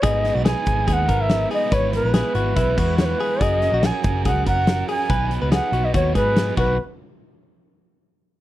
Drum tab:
CC |--------|--------|--------|-------x|
HH |xxxxxxxo|xxxxxxxo|xxxxxxxo|xxxxxxx-|
SD |-oo---o-|--o---o-|-oo---o-|--o---o-|
BD |o--ooo--|o---oo--|o--ooo--|o---oo-o|

CC |--------|
HH |--------|
SD |--------|
BD |--------|